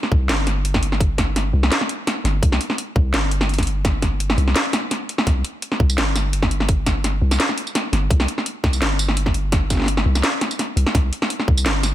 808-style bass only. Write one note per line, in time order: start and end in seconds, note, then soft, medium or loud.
0.11 0.30 C2 loud
0.29 1.52 G1 medium
1.53 1.70 C2 loud
2.24 2.41 G1 medium
2.42 2.59 C2 loud
2.96 3.15 C2 loud
3.13 4.36 G1 medium
4.37 4.54 C2 loud
5.27 5.43 C2 loud
5.80 5.99 C2 medium
5.97 7.21 G1 medium
7.22 7.38 C2 loud
7.92 8.09 G1 medium
8.10 8.27 C2 loud
8.64 8.82 C2 loud
8.81 10.04 G1 medium
10.06 10.22 C2 loud
10.76 10.85 C2 medium
10.95 11.11 C2 loud
11.48 11.67 C2 loud
11.65 11.95 G1 medium